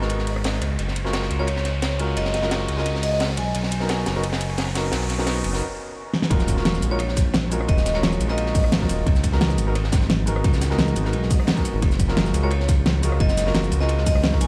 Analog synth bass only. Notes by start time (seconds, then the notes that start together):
Already playing: G#1
0.62 C#2
0.79 F#1
1.31 C#2
2.17 F#1
2.69 C#2
3.38 B1
3.55 B1
4.07 F#1
4.93 B1
5.44 F#1
6.31 D#1
6.83 A#1
7.69 D#1
8.20 A#1
8.89 D#1
9.06 C#2
9.58 G#1
10.44 C#2
10.96 G#1
11.13 B1
11.74 G#1
11.82 F#1
12.34 C#2
13.20 F#1
13.72 C#2
14.41 B1